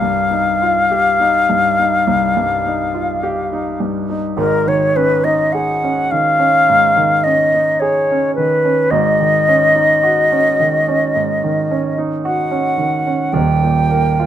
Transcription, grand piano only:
0.00 2.02 C2 medium
0.00 0.48 G2 soft
0.31 0.77 D#4 medium
0.62 1.07 F4 medium
0.91 1.37 G4 medium
1.20 1.66 D#4 medium
1.50 1.95 G2 medium
1.79 2.25 D#4 medium
2.07 4.33 C2 medium
2.37 2.82 G2 medium
2.66 3.11 D#4 medium
2.94 3.39 F4 medium
3.23 3.68 G4 medium
3.53 3.97 D#4 medium
3.80 4.26 G2 soft
4.10 4.38 D#4 medium
4.37 6.63 G#1 medium
4.37 6.63 G#2 medium
4.67 5.13 D#3 medium
4.96 5.42 C#4 medium
5.25 5.71 D#4 medium
5.54 5.99 G#4 medium
5.84 6.28 C#4 medium
6.12 6.56 D#3 medium
6.39 6.84 C#4 medium
6.69 8.88 G#2 medium
6.97 7.42 D#3 medium
7.26 7.70 C#4 medium
7.55 7.99 D#4 medium
7.82 8.26 G#4 medium
8.11 8.54 C#4 medium
8.38 8.81 D#3 medium
8.65 8.91 C#4 medium
8.91 11.12 G#1 medium
8.91 11.12 G#2 medium
9.20 9.64 D#3 soft
9.48 9.92 C#4 medium
9.75 10.21 D#4 medium
10.03 10.49 F#4 medium
10.32 10.77 C#4 medium
10.60 11.05 D#3 medium
10.88 11.33 C#4 medium
11.16 13.31 G#2 medium
11.44 11.87 D#3 medium
11.71 12.14 C#4 medium
11.98 12.41 D#4 medium
12.25 12.69 F#4 medium
12.51 12.96 C#4 medium
12.78 13.23 D#3 medium
13.07 13.35 C#4 medium
13.33 14.26 D#1 medium
13.33 14.26 D#2 medium
13.63 14.08 A#2 medium
13.91 14.26 A#3 medium
14.19 14.26 F4 medium

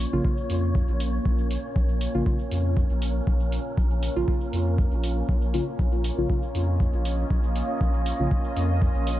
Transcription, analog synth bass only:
0.13 0.21 A#1 medium
0.50 0.81 F2 medium
0.89 1.19 A#1 loud
1.25 1.57 A#1 medium
1.76 2.07 A#1 loud
2.15 2.22 A#1 medium
2.52 2.83 F2 medium
2.90 3.21 A#1 medium
3.27 3.59 A#1 medium
3.78 4.09 A#1 loud
4.16 4.24 A#1 medium
4.53 4.85 F2 medium
4.92 5.23 A#1 medium
5.29 5.60 A#1 loud
5.79 6.11 A#1 loud
6.18 6.26 A#1 medium
6.55 6.86 F2 medium
6.94 7.24 A#1 loud
7.30 7.62 A#1 loud
7.81 8.12 A#1 loud
8.20 8.27 A#1 medium
8.57 8.88 F2 medium
8.95 9.20 A#1 medium

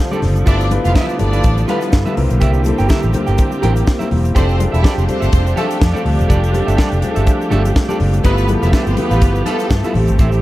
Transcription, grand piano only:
0.00 0.11 G3 medium
0.00 0.11 C4 medium
0.00 0.12 D4 medium
0.00 0.12 F4 medium
0.00 0.13 A4 loud
0.00 0.49 C5 medium
0.11 0.43 G3 medium
0.11 0.43 C4 medium
0.11 0.43 D4 medium
0.11 0.43 F4 medium
0.11 0.44 A4 loud
0.46 0.68 G3 medium
0.46 0.68 B3 medium
0.46 0.69 E4 medium
0.46 0.69 F4 medium
0.46 0.69 A4 medium
0.71 1.15 G3 medium
0.71 1.15 B3 medium
0.71 1.15 E4 medium
0.71 1.15 F4 medium
0.71 1.15 B4 loud
1.19 1.63 G3 medium
1.19 1.63 B3 medium
1.19 1.63 E4 medium
1.19 1.63 F4 medium
1.19 1.64 A4 medium
1.67 2.01 G3 medium
1.67 2.01 B3 medium
1.67 2.02 E4 medium
1.67 2.02 F4 medium
1.67 2.02 A4 loud
2.05 2.15 G3 medium
2.05 2.17 B3 medium
2.05 2.16 E4 medium
2.05 2.17 F4 medium
2.05 2.17 A4 loud
2.16 2.60 G3 medium
2.16 2.60 A#3 medium
2.16 2.61 C4 medium
2.16 2.61 E4 medium
2.16 2.61 A#4 loud
2.65 3.09 G3 medium
2.65 3.09 A#3 medium
2.65 3.09 C4 medium
2.65 3.10 E4 medium
2.65 3.10 A4 loud
3.14 3.58 G3 medium
3.14 3.58 A#3 medium
3.14 3.58 C4 medium
3.14 3.58 E4 medium
3.14 3.59 A#4 loud
3.62 3.96 G3 medium
3.62 3.96 A#3 medium
3.62 3.96 C4 medium
3.62 3.96 E4 medium
3.62 3.97 A#4 medium
4.00 4.32 G3 medium
4.00 4.32 A#3 medium
4.00 4.32 C4 medium
4.00 4.32 E4 medium
4.00 4.32 A#4 medium
4.35 4.57 G3 medium
4.35 4.57 C4 medium
4.35 4.58 D4 medium
4.35 4.58 F4 medium
4.35 4.58 A4 loud
4.59 5.03 G3 medium
4.59 5.03 C4 medium
4.59 5.04 D4 medium
4.59 5.04 F4 medium
4.59 4.67 G#4 medium
4.66 5.07 A4 medium
5.08 5.52 G3 medium
5.08 5.52 C4 medium
5.08 5.52 D4 medium
5.08 5.52 F4 medium
5.08 5.53 A4 medium
5.56 5.90 G3 medium
5.56 5.90 C4 medium
5.56 5.90 D4 medium
5.56 5.90 F4 medium
5.56 5.91 A4 loud
5.94 6.26 G3 medium
5.94 6.26 C4 medium
5.94 6.26 D4 medium
5.94 6.27 F4 medium
5.94 6.27 A4 loud
6.29 6.51 G3 medium
6.29 6.52 C4 medium
6.29 6.52 D4 medium
6.29 6.52 F4 medium
6.29 6.52 A4 loud
6.54 6.98 G3 medium
6.54 6.98 C4 medium
6.54 6.98 D4 medium
6.54 6.98 F4 medium
6.54 6.98 A4 loud
7.02 7.46 G3 medium
7.02 7.46 C4 medium
7.02 7.47 D4 medium
7.02 7.47 F4 medium
7.02 7.10 G#4 medium
7.10 7.50 A4 loud
7.51 7.84 G3 medium
7.51 7.85 C4 medium
7.51 7.85 D4 medium
7.51 7.85 F4 medium
7.51 7.85 A4 medium
7.88 8.20 G3 medium
7.88 8.21 C4 medium
7.88 8.21 D4 medium
7.88 8.21 F4 medium
7.88 8.21 A4 loud
8.23 8.46 G3 medium
8.23 8.46 B3 medium
8.23 8.46 E4 medium
8.23 8.46 F4 medium
8.23 8.46 A4 medium
8.48 8.92 G3 medium
8.48 8.92 B3 medium
8.48 8.92 E4 medium
8.48 8.93 F4 medium
8.48 8.56 G#4 medium
8.55 8.96 A4 loud
8.97 9.41 G3 medium
8.97 9.41 B3 medium
8.97 9.41 E4 medium
8.97 9.41 F4 medium
8.97 9.41 A4 medium
9.46 9.79 G3 medium
9.46 9.79 B3 medium
9.46 9.79 E4 medium
9.46 9.79 F4 medium
9.46 9.80 A4 loud
9.83 9.93 G3 medium
9.83 9.95 B3 medium
9.83 9.94 E4 medium
9.83 9.95 F4 medium
9.83 9.94 A4 loud
9.94 10.38 G3 medium
9.94 10.38 A3 medium
9.94 10.38 C4 medium
9.94 10.39 E4 medium
9.94 10.39 A4 medium

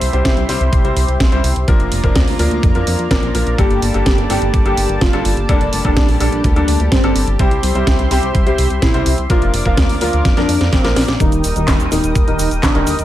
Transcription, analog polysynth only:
3.58 3.80 G4 loud
3.94 4.16 G4 medium
4.30 4.52 G4 medium
4.66 4.88 G4 loud
5.01 5.31 F4 medium
5.49 5.71 D4 medium
5.85 6.07 D4 medium
6.20 6.43 D4 medium
6.56 6.78 D4 loud
6.92 7.21 C4 medium
7.40 7.62 G4 loud
7.75 7.97 G4 medium
8.11 8.33 G4 medium
8.47 8.69 G4 medium
8.82 9.12 E4 loud
9.30 9.52 F4 medium
9.65 9.88 F4 medium
10.01 10.23 F4 loud
10.37 10.59 D4 loud
10.72 11.02 C4 loud
11.20 11.42 D#3 medium
11.20 11.42 D#4 loud
11.56 11.78 D#3 medium
11.56 11.78 D#4 medium
11.91 12.14 D#3 medium
11.91 12.14 D#4 loud
12.27 12.50 D#3 medium
12.27 12.50 D#4 medium
12.63 12.93 D3 medium
12.63 12.93 D4 medium

